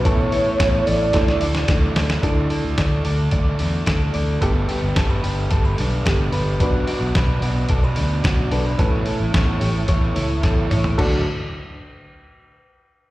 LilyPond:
<<
  \new Staff \with { instrumentName = "Soft synth lead" } { \time 4/4 \key d \major \tempo 4 = 110 cis''4. d''2 r8 | r1 | r1 | r1 |
r1 | r1 | }
  \new Staff \with { instrumentName = "Clean electric guitar" } { \time 4/4 \key d \major <a cis''>8 e'4 a'8 d8 d''8 d'8 a'8 | d8 a'8 d''8 a'8 d''8 d'8 a'8 d''8 | g8 g'8 a'16 b'16 g'8 a'16 b'16 d'8 g'8 b'8 | b,8 fis'8 b'8 fis'8 a'16 b'16 d'8 fis'8 a'16 b'16 |
a8 a'8 cis''8 g'16 a'16 cis''8 e'8 a'8 cis''8 | <d fis a d' fis' d''>8 r2. r8 | }
  \new Staff \with { instrumentName = "Upright piano" } { \time 4/4 \key d \major <b cis' e' a'>2 <a d' e' a'>2 | <d' e' a'>1 | <b g' a'>2. <b g' a'>4 | <d' fis' b'>2.~ <d' fis' b'>8 <d' fis' b'>8 |
<cis' a' b'>1 | <d' fis' a'>8 r2. r8 | }
  \new Staff \with { instrumentName = "Overdriven electric guitar" } { \time 4/4 \key d \major <a b e' a' cis''>8 <e' a' cis''>8 <a b e' a' cis''>8 <e' a' cis''>8 <a d' a' d''>8 <a d' a' d''>8 <d e a d' a' d''>8 <a d' a' d''>8 | <d e a d' a' d''>8 <a d' a' d''>8 <a d' a' d''>8 <a d' a' d''>8 <d e a d' a' d''>8 <a d' a' d''>8 <a d' a' d''>8 <a d' a' d''>8 | <g a d' a' b'>8 <d' a' b'>8 <a d' a' b'>8 <d' a' b'>8 <g a d' a' b'>8 <d' a' b'>8 <a d' a' b'>8 <d' a' b'>8 | <b, fis b d' fis' d''>8 <b d' fis' d''>8 <b d' fis' d''>8 <b d' fis' d''>8 <b, fis b d' fis' d''>8 <b d' fis' d''>8 <b d' fis' d''>8 <b d' fis' d''>8 |
<a b e' a' cis''>8 <e' a' cis''>8 <b e' a' cis''>8 <e' a' cis''>8 <a b e' a' cis''>8 <e' a' cis''>8 <b e' a' cis''>8 <e' a' cis''>8 | <d fis a d' fis' d''>8 r2. r8 | }
  \new Staff \with { instrumentName = "Fingered electric bass" } { \clef bass \time 4/4 \key d \major a,,4 a,,8 a,,8 d,8 d,8 d,8 d,8 | d,8 r16 d,16 d,8 d,8 d,8 e,8 d,8 d,8 | g,,8 r16 g,,16 g,,8 g,,8 g,,8 b,,8 g,,8 g,,8 | b,,8 r16 b,,16 b,,8 b,,8 b,,8 d,8 b,,8 b,,8 |
a,,8 r16 a,,16 a,,8 a,,8 a,,8 cis,8 a,,8 a,,8 | d,8 r2. r8 | }
  \new DrumStaff \with { instrumentName = "Drums" } \drummode { \time 4/4 <hh bd>8 hho8 <hh bd sn>8 hho8 <hh bd sn>16 sn16 hho16 sn16 <hh bd sn>8 <hho sn>16 sn16 | <hh bd>8 hho8 <hh bd sn>8 hho8 <hh bd>8 hho8 <hh bd sn>8 hho8 | <hh bd>8 hho8 <hh bd sn>8 hho8 <hh bd>8 hho8 <hh bd sn>8 hho8 | <hh bd>8 hho8 <hh bd sn>8 hho8 <hh bd>8 hho8 <hh bd sn>8 hho8 |
<hh bd>8 hho8 <hh bd sn>8 hho8 <hh bd>8 hho8 <hh bd sn>8 <hho toml>16 tomfh16 | <cymc bd>4 r4 r4 r4 | }
>>